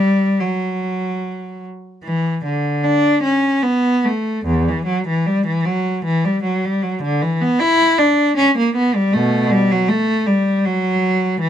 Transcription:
cello
Already playing: G3
0.40 F#3
2.04 E3
2.45 D3
2.84 D4
3.23 C#4
3.63 B3
4.05 A3
4.45 E2
4.68 E3
4.86 F#3
5.08 E3
5.26 G3
5.46 E3
5.65 F#3
6.05 E3
6.25 G3
6.43 F#3
6.65 G3
6.83 F#3
7.03 D3
7.22 E3
7.41 B3
7.59 E4
7.98 D4
8.37 C#4
8.58 A#3
8.76 B3
8.95 G3
9.13 B2 A3
9.51 G3
9.71 F#3
9.88 A3
10.27 G3
10.64 F#3
11.41 E3

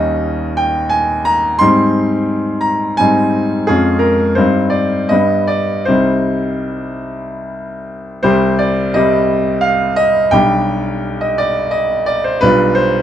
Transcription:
grand piano
Already playing: D#2 G3 C#4 D#4 D#5
0.57 G5
0.89 G#5
1.25 A#5
1.59 G#2 G3 C4 D#4 C6
2.61 A#5
2.97 G#2 G3 C4 D#4 G#5
3.67 F2 G#3 C#4 F4 G#4
3.99 A#4
4.35 G2 G3 C4 D#4 C5
4.70 D5
5.09 G2 G3 B3 D4 D#5
5.47 D5
5.85 C2 G3 C4 D#4 C5
8.23 C2 G3 C4 G4 C5
8.59 D5
8.94 C2 G3 C4 G4 D#5
9.61 F5
9.96 D#5
10.31 B1 G3 D4 G4 G5
11.21 D#5
11.38 D5
11.71 D#5
12.06 D5
12.24 C5
12.41 B1 G3 D4 F4 B4
12.75 C5

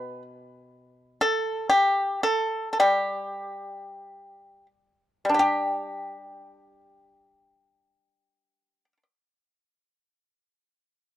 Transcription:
pipa
Already playing: B2 B4
1.21 A4
1.69 G4
2.23 A4
2.73 A4
2.80 G3 G4
5.25 G3
5.29 D4
5.34 G4
5.39 G4

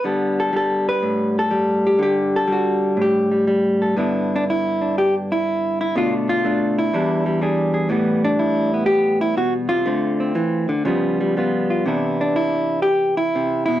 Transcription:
hollow-body jazz guitar
0.04 D3 G3 B3 A4
0.40 A4
0.53 G3 A4
0.89 B4
1.03 A2
1.39 A4
1.51 G3
1.87 G4
1.99 D3 G4
2.36 A4
2.48 G3
2.53 F#4
2.97 A2
3.02 G4
3.31 G3
3.47 G3
3.82 A4
3.97 G2 D3 B3 D4 E4
4.36 D4
4.50 E4
4.81 D4
4.98 G4
5.32 E4
5.81 E4
5.96 B2 D3 A3 D4 F4
6.29 F4
6.45 A3 D4
6.79 E4
6.94 E2 E3 G3 D4
7.26 G3
7.42 G3 D4 G#4
7.74 G#4
7.89 A2 E3 G3 B3
8.25 D4
8.39 E4
8.74 B3
8.86 G4
9.21 E4
9.37 B2 F#4
9.69 C3 F4
9.86 D3 A3 C4
10.20 C4
10.35 E3
10.69 D3
10.85 C#3 F3 G3 B3
11.21 G3
11.37 G3 B3 F4
11.70 F4
11.86 C3 E3 B3 D4 E4
12.21 D4
12.36 E4
12.82 G4
13.17 E4
13.35 C3
13.66 B2 E4

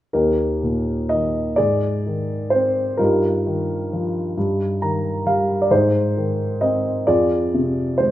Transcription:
grand piano
0.13 D#2 D#4 G4 A#4
0.63 A#2
1.09 D#3 D#5
1.56 G#2 G#4 D5
2.07 D#3
2.50 C4 C5
2.97 G2 D#4 F4 A#4
3.46 D#3
3.93 F3
4.37 G2
4.82 D#3 A#5
5.27 G3 F5
5.62 D5
5.71 G#2 D#4 G#4 C5
6.17 D#3
6.61 C4 D#5
7.07 F2 F4 G#4 D5
7.54 C3
7.98 G#3 C5

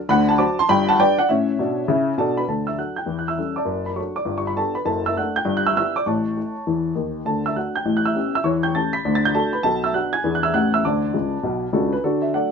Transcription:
upright piano
0.09 D2 D3 F#5 B5
0.29 F#5 A5
0.38 F#3 D4 C5 A5 D6
0.59 A5 C6
0.69 G1 G2 G5 B5
0.89 F#5 A5
0.99 G3 D4 B4 D5 G5
1.19 D5 F#5
1.29 A2 C#4 C#5 E5
1.59 B2 D4
1.88 C#3 E4
2.18 B2 D4 A4 A5
2.37 B4 B5
2.48 D2 D3 A4 A5
2.67 E5 E6
2.78 F#3 D4 A4 F#5 F#6
2.96 G5 G6
3.06 E2 E3
3.19 F#6
3.28 E5 E6
3.38 G3 C#4 A4
3.56 D5 A5 D6
3.65 F#1 F#2
3.86 B5
3.95 F#3 D4 A4 C#5 C#6
4.16 D5 D6
4.25 G1 G2
4.38 C#6
4.47 B5
4.57 B3 D4 G4 A4 A5
4.75 B4 B5
4.85 F#1 F#2 A4 A5
5.06 E5 E6
5.17 A3 D4 A4 F#5 F#6
5.36 G5 G6
5.45 G1 G2
5.57 F#6
5.67 E5 E6
5.76 B3 E4 G4 E5 E6
5.96 D5 D6
6.06 A1 A2 C#5 A5 C#6
6.37 A3 E4
6.67 E2 E3
6.95 D#2 D#3
7.25 D2 D3 A4 A5
7.46 E5 E6
7.56 A3 D4 F#4 F#5 F#6
7.76 G5 G6
7.85 A1 A2
7.97 F#6
8.05 E5 E6
8.15 B3 C#4 G4
8.35 E5 E6
8.44 E2 E3 C#5 C#6
8.63 G5 G6
8.75 A3 C#4 G4 A5 A6
8.93 B5 B6
9.05 D2 D3
9.15 A6
9.25 G6
9.34 A3 D4 F#4 A4 A5
9.53 B4 B5
9.63 B1 B2 A4 A5
9.84 E5 E6
9.93 B3 D4 F#4 F#5 F#6
10.13 G#5 G#6
10.24 E2 E3 B3 D4 G#4
10.35 F#6
10.43 E5 E6
10.54 A1 A2 B3 C#4 G4 F#5 F#6
10.74 E5 E6
10.84 D2 D3 D5 A5 D6
11.14 C#2 C#3
11.43 B1 B2
11.73 C#2 C#3 D4 F#4 A4
11.93 B4
12.04 D3 D4 F#4 A4
12.22 E5
12.34 F#3 A3 D4 A4 D5 F#5

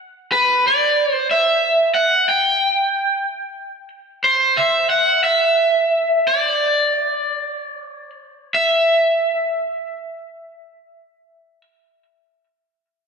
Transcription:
overdriven electric guitar
0.32 B4
0.67 D5
1.12 C5
1.31 E5
1.94 F#5
2.29 G5
4.24 C5
4.57 E5
4.90 F#5
5.24 E5
6.28 D5
8.55 E5

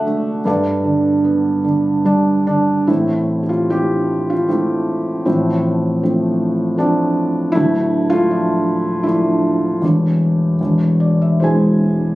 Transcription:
felt piano
Already playing: D3 A3 D4 F#4 A4 D5 E5 F#5
0.06 A3
0.45 G2 A4 B4 D5
0.84 D3
1.24 B3
1.64 D3
2.05 G3 D4
2.47 D3 D4
2.87 A1 A2 A3 C4 E4
3.43 G4
3.49 F4
3.70 A3 C4 E4 G4
4.30 F4
4.48 A3 C4 E4
5.25 A1 A2 F3 A3 C4
6.03 F3 A3 C4
6.78 F3 A3 C4 D4
7.52 D1 D2 A3 E4
8.10 A3 F4
8.30 F3 D4 E5
9.03 F3 A3 D4 E4
9.82 E1 E2
10.61 E1 E2
11.00 D5
11.22 E5
11.40 B2 G#3 E4 G#4 C5 G#5

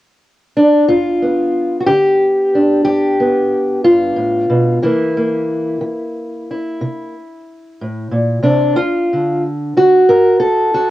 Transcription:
steel-string acoustic guitar
0.56 D4
0.88 G2 F4
1.22 B3
1.81 F#4
1.87 D3 G4
2.55 D4
2.85 G2 G4
3.20 B3
3.84 G2 F4
4.16 A2
4.50 B2
4.83 C3 E3 A#3 E4
5.17 A#3
5.81 E3
6.51 E4
6.81 C3
7.81 A2
8.11 A#2
8.43 C3 D4
8.76 D2 F4
9.13 D3
9.77 D3 F#4
10.09 A#4
10.40 A4
10.74 D2 F#4

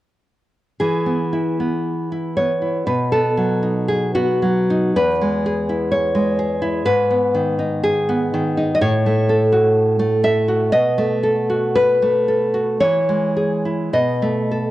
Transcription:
nylon-string guitar
0.80 E3 G#4
1.06 B3
1.33 E4
1.60 B3
2.12 E4
2.37 B3 C#5
2.62 E4
2.87 B2 B4
3.12 B3 A4
3.38 F#3
3.63 D#4
3.89 G#4
4.15 B3 F#4
4.42 F#3
4.70 D#4
4.96 E2 B4
5.22 G#3
5.46 G#4
5.69 E4
5.91 C#5
6.15 G#3
6.39 G#4
6.62 E4
6.85 G#2 B4
7.11 B3
7.35 D#3
7.59 D#4
7.84 G#4
8.09 B3
8.34 D#3
8.57 D#4
8.75 D#5
8.81 A2 C#5
9.06 A3
9.29 A4
9.52 F#4
9.99 A3
10.24 A4 E5
10.48 F#4
10.72 B2 D#5
10.98 A3
11.23 A4
11.49 F#4
11.75 B4
12.02 A3
12.28 A4
12.54 F#4
12.80 E3 C#5
13.09 G#3
13.37 G#4
13.65 E4
13.93 B2 D#5
14.22 A3
14.51 A4

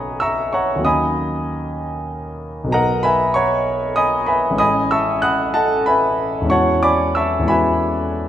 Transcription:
grand piano
Already playing: B1 F#3 B3 C#4 D#4 B4 C#5 D#5 E5 F#5 G#5 A#5 B5 C#6 D#6
0.20 E5 A#5 C#6 E6
0.53 C#5 F#5 A#5 C#6
0.76 D#2 F#3
0.80 A#3 C#4 D#4
0.85 D#5 G#5 B5 D#6
2.64 B1 F#3 B3
2.71 D#4 A#4 D#5 F#5 A#5
3.03 B4 E5 G#5 B5
3.34 C#5 F#5 A#5 C#6
3.96 D#5 G#5 B5 D#6
4.26 B4 E5 G#5 B5
4.50 A1 G#3 C#4
4.56 E4 D#5 B5 D#6
4.60 G#5
4.91 E5 A5 C#6 E6
5.22 F#5 B5 D#6 F#6
5.54 A4 D#5 F#5 A5
5.86 B4 E5 G#5 B5
6.41 E2 G#3
6.46 C#4 E4 F#4
6.50 C#5 F#5 A5 C#6
6.83 D5 G#5 B5 D6
7.15 E5 A5 C#6 E6
7.39 E2 G#3
7.44 C#4 E4
7.48 F#4 B4 E5 G#5 B5

